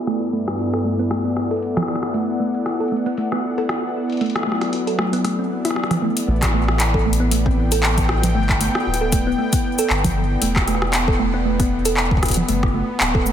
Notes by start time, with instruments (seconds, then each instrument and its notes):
Already playing: analog synth pad B3 E4 A4 D5
0.07 analog synth pad G2, synth arpeggio sound A3, cross-stick, closed hi-hat
0.33 synth arpeggio sound A3
0.47 analog synth pad F#5, cross-stick, closed hi-hat
0.59 closed hi-hat
0.73 synth arpeggio sound A4, cross-stick, closed hi-hat
0.85 synth arpeggio sound A3
0.99 synth arpeggio sound B3, closed hi-hat
1.11 synth arpeggio sound A3, cross-stick, closed hi-hat
1.25 synth arpeggio sound B3
1.37 cross-stick
1.51 synth arpeggio sound A4, closed hi-hat
1.54 closed hi-hat
1.57 closed hi-hat
1.60 closed hi-hat
1.62 closed hi-hat
1.66 closed hi-hat
1.70 closed hi-hat
1.73 cross-stick, closed hi-hat
1.77 closed hi-hat, low conga
1.83 cross-stick
1.88 cross-stick
1.95 cross-stick
2.03 cross-stick
2.14 synth arpeggio sound A3, closed hi-hat
2.40 synth arpeggio sound A3
2.54 closed hi-hat
2.66 cross-stick, closed hi-hat
2.80 synth arpeggio sound A4, closed hi-hat
2.88 synth arpeggio sound A3, closed hi-hat
2.97 closed hi-hat
3.06 synth arpeggio sound B3, closed hi-hat
3.18 synth arpeggio sound A3, closed hi-hat
3.32 synth arpeggio sound B3, cross-stick
3.58 synth arpeggio sound A4, closed hi-hat
3.69 cross-stick, closed hi-hat
4.10 closed hi-hat
4.12 closed hi-hat
4.17 closed hi-hat
4.21 analog synth pad F#3, synth arpeggio sound A3, closed hi-hat
4.26 closed hi-hat
4.30 closed hi-hat
4.36 cross-stick, closed hi-hat
4.43 synth arpeggio sound A3, cross-stick
4.52 cross-stick
4.61 cross-stick, closed hi-hat
4.73 closed hi-hat
4.87 synth arpeggio sound A4, closed hi-hat
4.99 synth arpeggio sound A3, cross-stick
5.13 synth arpeggio sound B3, closed hi-hat
5.24 synth arpeggio sound A3, cross-stick, closed hi-hat
5.39 synth arpeggio sound C4
5.65 synth arpeggio sound E4, cross-stick, closed hi-hat
5.71 cross-stick
5.76 cross-stick
5.84 cross-stick
5.91 cross-stick, closed hi-hat, low conga
6.02 synth arpeggio sound A3
6.17 closed hi-hat
6.28 sub bass A1, synth arpeggio sound A3
6.42 kick, cross-stick, clap, closed hi-hat
6.45 cross-stick
6.48 cross-stick
6.51 synth arpeggio sound A3, cross-stick
6.68 cross-stick
6.80 clap, closed hi-hat
6.94 synth arpeggio sound A4, kick
7.06 synth arpeggio sound A3
7.13 closed hi-hat
7.20 synth arpeggio sound B3, analog synth pad G5
7.31 synth arpeggio sound A3, closed hi-hat
7.46 synth arpeggio sound C4, kick
7.72 synth arpeggio sound A4, closed hi-hat, cabasa
7.83 clap
7.98 kick, closed hi-hat
8.09 cross-stick
8.23 closed hi-hat, low conga
8.35 sub bass G1, synth arpeggio sound A3, analog synth pad B3
8.49 kick, clap
8.61 synth arpeggio sound A3, closed hi-hat
8.75 cross-stick
8.87 sub bass D1
8.94 closed hi-hat
9.01 synth arpeggio sound A4
9.12 synth arpeggio sound A3, kick, closed hi-hat, cabasa
9.27 synth arpeggio sound B3
9.38 synth arpeggio sound A3
9.53 synth arpeggio sound B3, kick, closed hi-hat, cabasa
9.79 synth arpeggio sound A4, closed hi-hat, cabasa
9.90 sub bass G1, clap
10.04 kick, closed hi-hat, low conga
10.42 sub bass E1, synth arpeggio sound A3, closed hi-hat
10.56 kick, cross-stick, clap
10.62 cross-stick
10.68 synth arpeggio sound A3, cross-stick, closed hi-hat
10.75 cross-stick
10.82 cross-stick
10.93 clap, closed hi-hat
11.08 synth arpeggio sound A4, kick
11.19 synth arpeggio sound A3
11.34 synth arpeggio sound B3
11.45 synth arpeggio sound A3
11.60 synth arpeggio sound B3, kick, closed hi-hat
11.85 synth arpeggio sound A4, closed hi-hat, cabasa
11.97 clap
12.11 kick
12.17 kick
12.23 kick, cross-stick, closed hi-hat
12.26 closed hi-hat
12.29 kick, closed hi-hat
12.31 closed hi-hat
12.34 closed hi-hat, low conga
12.49 sub bass F#1, synth arpeggio sound A3, closed hi-hat
12.63 kick, cross-stick
12.74 synth arpeggio sound A3
13.00 sub bass D1, clap
13.05 analog synth pad E4 A4
13.15 synth arpeggio sound A4, kick
13.26 synth arpeggio sound A3, cabasa